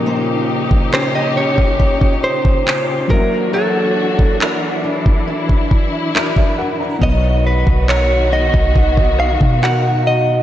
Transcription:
0.00 3.05 A#2 medium
0.00 3.07 C#3 medium
0.00 3.05 F3 medium
0.00 3.06 C#4 medium
0.00 3.06 D#4 medium
0.00 3.07 G4 medium
0.00 3.11 A#4 medium
0.06 3.09 A#3 medium
0.06 0.93 C5 medium
0.71 kick medium
0.93 1.35 C#4 medium
0.93 1.78 G4 medium
0.93 1.15 C5 medium
0.93 clap loud
1.15 1.37 D#5 medium
1.36 2.65 C#4 medium
1.36 2.24 C#5 loud
1.58 kick medium
1.79 2.66 G4 medium
1.79 kick medium
2.01 kick medium
2.24 3.13 C5 medium
2.45 kick medium
2.66 3.19 C#4 medium
2.66 3.19 G4 medium
2.66 3.19 C5 medium
2.66 clap loud
3.07 6.98 E3 medium
3.07 6.09 F#3 medium
3.07 3.53 F#3 medium
3.07 6.11 A#3 medium
3.07 6.98 D4 medium
3.07 6.10 E4 medium
3.07 6.10 F#4 medium
3.07 4.82 F#4 medium
3.07 3.54 A#4 medium
3.07 kick loud
3.12 6.12 D5 medium
3.12 6.12 E5 medium
3.53 7.01 F#3 medium
3.53 4.37 A4 medium
3.53 4.41 A#4 medium
4.19 kick medium
4.40 4.83 D4 medium
4.40 5.26 E4 medium
4.40 6.15 A#4 medium
4.40 clap loud
4.84 6.13 D4 medium
4.84 6.99 E4 medium
5.06 kick loud
5.27 6.14 E4 medium
5.49 kick medium
5.71 kick medium
6.14 7.10 D4 medium
6.14 7.10 E4 medium
6.14 6.36 F#4 medium
6.14 7.04 A#4 medium
6.14 6.36 D5 medium
6.14 clap loud
6.36 6.57 E5 medium
6.36 kick medium
6.58 6.79 A#4 medium
6.58 6.79 F#5 medium
6.80 7.21 D5 medium
6.80 7.21 A#5 medium
6.99 7.64 B1 loud
6.99 10.43 B2 medium
6.99 10.43 D#3 medium
6.99 10.43 F#3 medium
6.99 10.43 B3 medium
6.99 10.43 D#4 medium
6.99 10.43 F#4 medium
6.99 kick loud
7.03 10.43 B4 medium
7.03 10.43 C#5 medium
7.03 7.46 D#5 medium
7.47 7.89 B4 medium
7.67 8.50 B1 medium
7.67 kick medium
7.88 8.32 D#4 medium
7.88 8.74 F#4 medium
7.88 9.62 A#4 medium
7.88 8.33 C#5 medium
7.88 clap loud
8.32 9.62 D#4 medium
8.32 9.19 D#5 medium
8.54 9.37 B1 medium
8.54 kick loud
8.75 9.62 F#4 medium
8.75 kick medium
8.97 kick medium
9.20 9.63 F5 medium
9.41 10.43 B2 loud
9.41 kick medium
9.62 10.43 D#4 medium
9.62 10.43 F#4 medium
9.62 10.43 A#4 medium
9.62 10.07 F#5 loud
9.62 clap loud
10.07 10.43 D#5 loud

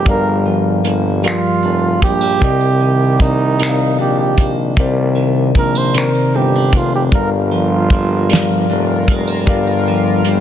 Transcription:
0.00 0.45 F3 medium
0.00 0.05 G3 medium
0.00 0.84 A#3 medium
0.00 1.63 D4 medium
0.00 0.06 G4 medium
0.00 0.14 A#4 medium
0.00 0.08 D5 medium
0.00 2.44 G5 medium
0.05 0.81 G1 medium
0.05 2.42 G2 medium
0.05 0.80 G3 medium
0.05 0.81 G4 medium
0.05 0.13 G#4 medium
0.05 0.82 D5 medium
0.05 0.82 F5 medium
0.05 kick loud
0.05 closed hi-hat medium
0.09 0.45 A#4 medium
0.14 0.84 A#4 medium
0.46 1.22 F3 medium
0.85 1.32 G1 medium
0.85 2.02 A#3 medium
0.85 closed hi-hat medium
1.22 2.49 F3 medium
1.22 1.98 G3 medium
1.22 1.99 F4 medium
1.22 1.98 G4 medium
1.22 1.99 A#4 medium
1.22 1.99 D5 medium
1.22 2.00 F5 medium
1.22 closed hi-hat medium
1.28 finger snap loud
1.63 2.04 F1 medium
1.63 2.83 D4 medium
2.02 2.44 A#1 medium
2.02 2.21 G#3 medium
2.02 3.22 G4 loud
2.02 kick medium
2.02 closed hi-hat medium
2.21 2.49 A#3 soft
2.40 4.01 C2 loud
2.40 3.15 C3 medium
2.40 4.75 C3 medium
2.40 3.16 C4 medium
2.40 3.16 A#4 medium
2.40 3.17 D5 medium
2.40 3.17 D#5 medium
2.40 kick medium
2.40 closed hi-hat medium
2.80 3.58 D#3 medium
3.20 4.37 A#3 medium
3.20 3.99 D#4 medium
3.20 kick medium
3.20 closed hi-hat medium
3.59 4.34 C3 medium
3.59 5.14 D#3 medium
3.59 4.34 C4 medium
3.59 4.34 A#4 medium
3.59 4.35 D5 medium
3.59 3.68 D#5 medium
3.59 closed hi-hat medium
3.63 finger snap loud
3.69 4.39 F5 medium
3.99 4.35 A#1 medium
3.99 6.34 D4 medium
3.99 4.17 G4 medium
4.19 4.55 G4 medium
4.38 4.73 A#1 medium
4.38 5.55 A#3 medium
4.38 kick medium
4.38 closed hi-hat medium
4.77 5.52 C2 loud
4.77 7.12 C3 medium
4.77 5.52 C3 medium
4.77 5.52 C4 medium
4.77 5.53 A#4 medium
4.77 5.53 D5 medium
4.77 kick loud
4.77 closed hi-hat medium
4.81 5.53 C5 loud
5.15 5.94 D#3 soft
5.55 6.07 A#1 medium
5.55 5.75 G#3 medium
5.55 5.79 A#4 medium
5.55 kick medium
5.55 closed hi-hat medium
5.75 6.73 A#3 soft
5.75 5.99 C5 medium
5.94 6.69 C3 medium
5.94 7.21 D#3 medium
5.94 6.69 C4 medium
5.94 6.70 A#4 medium
5.94 6.38 A#4 medium
5.94 6.70 C5 medium
5.94 6.70 D5 medium
5.94 closed hi-hat medium
5.98 finger snap loud
6.34 6.75 G1 medium
6.34 6.56 C4 medium
6.34 6.78 G4 medium
6.56 7.21 D4 medium
6.73 7.08 F1 medium
6.73 7.91 A#3 medium
6.73 kick medium
6.73 closed hi-hat medium
6.77 6.95 F4 medium
6.95 7.03 G4 medium
7.12 8.66 G1 loud
7.12 9.47 G2 medium
7.12 7.86 G3 medium
7.12 10.40 G3 medium
7.12 10.40 F4 medium
7.12 7.87 G4 medium
7.12 7.87 A#4 medium
7.12 10.40 A#4 medium
7.12 7.30 A#4 medium
7.12 7.88 D5 medium
7.12 7.88 F5 medium
7.12 kick loud
7.12 closed hi-hat medium
7.51 8.29 F3 medium
7.51 8.67 F4 medium
7.90 9.08 A#3 medium
7.90 kick loud
7.90 closed hi-hat medium
8.29 9.87 F3 medium
8.29 9.04 G3 medium
8.29 9.04 G4 medium
8.29 9.05 A#4 medium
8.29 9.05 D5 medium
8.29 9.06 F5 medium
8.29 closed hi-hat medium
8.33 snare loud
8.70 9.05 F1 medium
8.70 10.40 D4 medium
9.08 9.44 F1 medium
9.08 9.28 G#3 medium
9.08 kick medium
9.08 closed hi-hat medium
9.28 10.26 A#3 soft
9.45 10.22 G1 medium
9.45 10.40 G2 medium
9.45 10.21 G3 loud
9.45 10.21 G4 medium
9.45 10.22 A#4 medium
9.45 10.22 D5 medium
9.45 10.23 F5 loud
9.45 kick medium
9.45 closed hi-hat medium
9.88 10.40 F3 medium
10.24 10.40 G1 medium
10.24 10.40 A#3 medium
10.24 closed hi-hat medium

